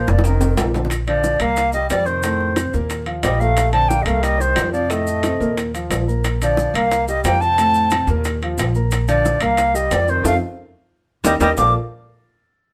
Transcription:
Already playing: A#2 F3 A#3 A#4 C5
0.07 F1 F3 D5, high bongo, maracas
0.19 high bongo
0.24 C3 D#3 C4 D#4 A#4, high timbale, maracas
0.41 C3 C4 D#4, low bongo, high timbale, maracas
0.57 A#1, low timbale, maracas
0.74 D3 D4 F4, low bongo, low timbale, maracas
0.85 low bongo
0.90 high bongo, high timbale, maracas
1.07 D3 F3 D4 D5, high bongo, high timbale
1.24 high bongo, low timbale, maracas
1.40 C2 A#3 A#4 F5 A#5, high bongo, high timbale, maracas
1.56 high bongo, high timbale, maracas
1.73 G3 G4 D#5 G5, high bongo, maracas
1.90 F2 G3 D5, high bongo, low bongo, high timbale, low timbale, maracas
2.06 C3 D#3 C4 C5, maracas
2.23 A2 A3 A4, high bongo, high timbale, maracas
2.40 high bongo
2.56 C3 C4 C5, high bongo, high timbale, low timbale, maracas
2.73 D#2 A#2 A#3 A#4, high bongo, maracas
2.90 high bongo, high timbale, maracas
3.06 F3 F4 F5, high bongo, high timbale
3.23 A#1 G3 D#5, high bongo, low bongo, high timbale, low timbale, maracas
3.39 A#2 A3 G4 F5 A#5, maracas
3.57 high bongo, high timbale, maracas
3.72 D3 C4 D4 D5 A5, high bongo, high timbale
3.88 A#3 G5, high bongo, low timbale, maracas
4.01 G3 A3 D#5
4.05 C2 A#3 A#4 F5 A#5, high bongo, high timbale, maracas
4.21 G3 D#5, high bongo, high timbale, maracas
4.38 D#3 G3 G4 C5 G5, high bongo, maracas
4.56 F2, high bongo, low bongo, high timbale, low timbale, maracas
4.72 C3 F3 C4 C5 D5, maracas
4.90 A2 A3 A4 D#5, high bongo, high timbale, maracas
5.07 high bongo, maracas
5.23 C3 C4 C5, high bongo, high timbale, low timbale, maracas
5.40 D#2 A#2 A#3 A#4, high bongo, maracas
5.58 high bongo, high timbale, maracas
5.74 F3 F4 F5, high bongo, high timbale, maracas
5.90 A#1, high bongo, low bongo, high timbale, low timbale, maracas
6.08 A#3 A#4 A#5, maracas
6.24 high bongo, high timbale, maracas
6.42 D3 F3 D4 D5, high bongo, high timbale, maracas
6.57 high bongo, low timbale, maracas
6.74 C2 A#3 A#4 F5 A#5, high bongo, high timbale, maracas
6.91 high bongo, high timbale, maracas
7.08 G3 G4 D#5 G5, high bongo, maracas
7.24 F2 A#3 G5, high bongo, low bongo, high timbale, low timbale, maracas
7.41 C3 C4 C5 A5, maracas
7.58 A2 A3 A4, high bongo, high timbale, maracas
7.74 high bongo, maracas
7.90 C3 C4 C5, high bongo, high timbale, low timbale, maracas
8.07 D#2 A#2 A#3 A#4, high bongo, maracas
8.24 high bongo, high timbale, maracas
8.42 F3 F4 F5, high bongo, high timbale
8.58 A#1, high bongo, low bongo, high timbale, low timbale, maracas
8.75 A#3 A#4 A#5, maracas
8.91 high bongo, high timbale, maracas
9.08 D3 F3 D4 D5, high bongo, high timbale, maracas
9.25 high bongo, low timbale, maracas
9.41 C2 A#3 A#4 F5 A#5, high bongo, high timbale, maracas
9.57 high bongo, high timbale, maracas
9.74 G3 G4 D#5 G5, high bongo, maracas
9.91 F2 G3 D5, high bongo, low bongo, high timbale, low timbale, maracas
10.08 C3 D#3 C4 C5, maracas
10.24 F2 A3 C4 D#4 F4 F5, high bongo, high timbale, maracas
11.24 D#2 G3 A#3 D#4 D#5, high bongo, high timbale, maracas
11.40 D#2 G3 A#3 D#4 D#5, high bongo, high timbale, maracas
11.56 A#1 F3 A#3 F4 A4 A#4 D5 F5 D6, low bongo, low timbale, maracas

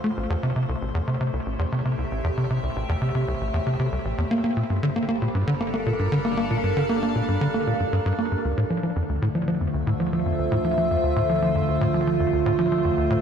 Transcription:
Already playing: D2 D3 A3 F4 C5 F5
0.04 A3
0.17 A1 A2
0.30 E2
0.43 C3
0.56 C3
0.69 C2
0.74 G4
0.82 A1
0.95 E2
1.07 C3
1.21 C3
1.33 C2 E5
1.46 A1
1.59 E2
1.72 C3
1.85 C3
1.98 C2
2.11 A1
2.24 E2
2.37 C3
2.50 C3
2.63 C2
2.76 A1
2.89 E2
3.01 C3
3.15 C3
3.28 C2
3.41 A1
3.54 E2
3.66 C3
3.79 C3
3.92 C2
4.05 A1
4.18 E2
4.31 G1 G3 A#3
4.44 A#3
4.57 A#2
4.67 G2 D4
4.78 A4
4.83 D3
4.93 A#3 A#4
5.09 A#3
5.22 A#2
5.35 G2
5.47 D3
5.61 A#3
5.71 A#3 F5
5.86 A#2
5.99 G2
6.12 D3
6.25 A#3
6.37 A#3
6.50 A#2
6.64 G2
6.77 D3
6.89 A#3
7.03 A#3
7.15 A#2
7.28 G2
7.41 D3
7.54 A#3
7.67 A#2
7.80 G2
7.93 G2
8.06 G2
8.19 A#3
8.32 G2
8.44 D2 D3
8.57 A2
8.70 F3
8.77 A3
8.83 F3
8.96 F2 F4
9.09 D2 E5
9.22 A2
9.35 F3
9.48 F3 C5
9.61 F2
9.74 D2
9.87 A2
10.00 F3
10.13 F3
10.26 F2
10.39 D2
10.52 A2
10.65 F3
10.78 F3
10.91 F2
11.03 D2
11.16 A2
11.29 F3
11.42 F3
11.55 F2
11.68 D2
11.81 A2
11.94 F3
12.07 F3
12.20 F2
12.33 D2
12.46 A2
12.59 F3
12.72 F3
12.85 F2
12.98 D2
13.10 A2

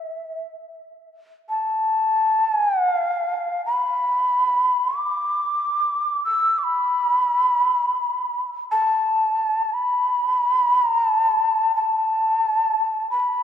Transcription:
Already playing: E5
1.49 A5
2.53 G#5
2.66 G5
2.79 F#5
2.93 F5
3.66 B5
4.97 D6
6.25 E6
6.58 D6
6.64 B5
8.71 A5
9.73 B5
10.78 A#5
11.04 A5
11.75 A5
13.10 B5

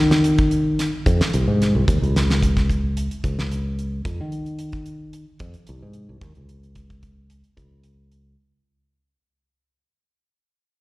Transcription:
Already playing: D#3
0.11 snare, closed hi-hat
0.24 closed hi-hat
0.38 kick, closed hi-hat
0.51 closed hi-hat
0.79 snare, closed hi-hat
1.06 F2, kick, closed hi-hat
1.21 snare, closed hi-hat
1.34 C2, closed hi-hat
1.48 G#2
1.62 snare, closed hi-hat
1.75 C2
1.88 D#2, kick, closed hi-hat
2.02 C#2, closed hi-hat
2.16 snare, closed hi-hat
2.30 snare, closed hi-hat
2.42 kick, closed hi-hat
2.57 kick, snare, closed hi-hat
2.70 kick, closed hi-hat
2.97 closed hi-hat
3.11 closed hi-hat
3.24 C#2, kick, closed hi-hat
3.39 snare
3.52 closed hi-hat
3.79 closed hi-hat
4.05 F2, kick, closed hi-hat
4.21 D#3
4.32 closed hi-hat
4.46 closed hi-hat
4.59 closed hi-hat
4.72 kick, closed hi-hat
4.86 closed hi-hat
5.13 closed hi-hat
5.39 F2, kick, closed hi-hat
5.54 closed hi-hat
5.67 C2, closed hi-hat
5.82 G#2
5.93 closed hi-hat
6.09 C2
6.21 D#2, kick, closed hi-hat
6.35 C#2, closed hi-hat
6.49 closed hi-hat
6.63 closed hi-hat
6.75 kick, closed hi-hat
6.90 kick, closed hi-hat
7.03 kick, closed hi-hat
7.30 closed hi-hat
7.44 closed hi-hat
7.57 C#2, kick, closed hi-hat
7.83 closed hi-hat
8.12 closed hi-hat

